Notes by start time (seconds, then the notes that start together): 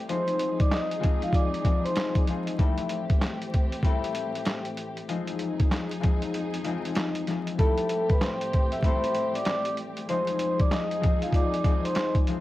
Already playing: G3 A3 E4 A4
0.09 F2 F3 G#3 C4 D#4 G#4 C5 C6, closed hi-hat
0.28 closed hi-hat
0.39 closed hi-hat
0.60 D5 D6, kick, closed hi-hat
0.71 D#5 D#6, snare, clap, closed hi-hat
0.92 closed hi-hat
1.00 F3 G#3 C4 D#4 G#4, closed hi-hat
1.04 kick
1.22 F4 F5, closed hi-hat
1.33 D5 D6, kick, closed hi-hat
1.54 closed hi-hat
1.64 F3 G#3 C4 D#4 G#4, kick, closed hi-hat
1.84 C5 C6, closed hi-hat
1.96 snare, clap, closed hi-hat
2.15 kick, closed hi-hat
2.27 F3 G#3 C4 D#4 G#4, closed hi-hat
2.47 closed hi-hat
2.58 A2 E3 G3 A3 C4 E4 G4 A4, kick, closed hi-hat
2.78 closed hi-hat
2.89 closed hi-hat
3.10 kick, closed hi-hat
3.21 snare, clap, closed hi-hat
3.42 closed hi-hat
3.54 kick, closed hi-hat
3.72 closed hi-hat
3.83 G3 A3 C4 E4 A4, kick, closed hi-hat
4.04 closed hi-hat
4.15 closed hi-hat
4.35 closed hi-hat
4.45 snare, clap, closed hi-hat
4.65 closed hi-hat
4.77 closed hi-hat
4.97 closed hi-hat
5.08 F2 F3 G#3 C4 D#4 G#4, closed hi-hat
5.27 closed hi-hat
5.39 closed hi-hat
5.60 kick, closed hi-hat
5.71 snare, clap, closed hi-hat
5.91 closed hi-hat
6.00 F3 G#3 C4 D#4 G#4, kick, closed hi-hat
6.22 closed hi-hat
6.34 closed hi-hat
6.54 closed hi-hat
6.64 F3 G#3 C4 D#4 G#4, closed hi-hat
6.85 closed hi-hat
6.95 snare, clap, closed hi-hat
7.15 closed hi-hat
7.27 F3 G#3 C4 D#4 G#4, snare, closed hi-hat
7.47 closed hi-hat
7.58 A2 E3 G3 A3 C4 E4 G4 A4 A5, kick, closed hi-hat
7.78 closed hi-hat
7.89 closed hi-hat
8.09 B4 B5, kick, closed hi-hat
8.21 C5 C6, snare, clap, closed hi-hat
8.41 closed hi-hat
8.53 kick, closed hi-hat
8.72 E5 E6, closed hi-hat
8.83 G3 A3 C4 E4 A4 C5 C6, kick, closed hi-hat
9.04 closed hi-hat
9.15 closed hi-hat
9.34 D5 D6, closed hi-hat
9.45 D5 D6, snare, clap, closed hi-hat
9.65 closed hi-hat
9.77 closed hi-hat
9.97 closed hi-hat
10.09 F2 F3 G#3 C4 D#4 G#4 C5 C6, closed hi-hat
10.27 closed hi-hat
10.39 closed hi-hat
10.60 D5 D6, kick, closed hi-hat
10.71 D#5 D#6, snare, clap, closed hi-hat
10.91 closed hi-hat
11.00 F3 G#3 C4 D#4 G#4, kick, closed hi-hat
11.22 F4 F5, closed hi-hat
11.32 D5 D6, kick, closed hi-hat
11.54 closed hi-hat
11.64 F3 G#3 C4 D#4 G#4, kick, closed hi-hat
11.84 C5 C6, closed hi-hat
11.95 snare, clap, closed hi-hat
12.15 kick, closed hi-hat
12.27 F3 G#3 C4 D#4 G#4, closed hi-hat